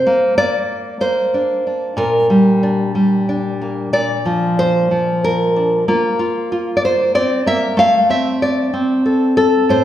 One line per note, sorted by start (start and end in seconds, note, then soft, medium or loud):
0.00 0.37 C5 loud
0.07 0.37 A#3 medium
0.38 1.00 A#3 medium
0.38 1.01 D5 loud
1.01 2.30 A#3 soft
1.01 1.97 C5 medium
1.34 1.66 D4 soft
1.67 2.62 D4 soft
1.97 3.88 A#2 medium
1.97 3.93 A#4 medium
2.30 2.94 G3 medium
2.63 3.28 D4 soft
2.95 3.89 G3 soft
3.29 5.55 D4 soft
3.62 5.56 A#3 soft
3.93 5.83 A#2 medium
3.93 4.58 D5 medium
4.25 4.91 F3 medium
4.59 5.23 C5 medium
4.91 5.88 F3 soft
5.24 6.76 A#4 medium
5.56 5.84 D4 soft
5.88 7.14 A#3 medium
5.88 6.19 F4 soft
6.19 6.51 F4 medium
6.52 8.13 F4 soft
6.77 6.83 D5 medium
6.85 7.15 C5 medium
7.15 7.46 C4 medium
7.15 7.46 D5 medium
7.46 7.78 A#3 soft
7.46 7.78 E5 loud
7.77 9.64 A3 medium
7.77 8.10 F5 loud
8.09 8.73 C4 medium
8.09 8.42 E5 medium
8.42 9.69 D5 medium
8.73 9.84 C4 medium
9.06 9.36 A4 soft
9.37 9.84 A4 loud
9.69 9.84 A2 medium
9.69 9.84 C5 loud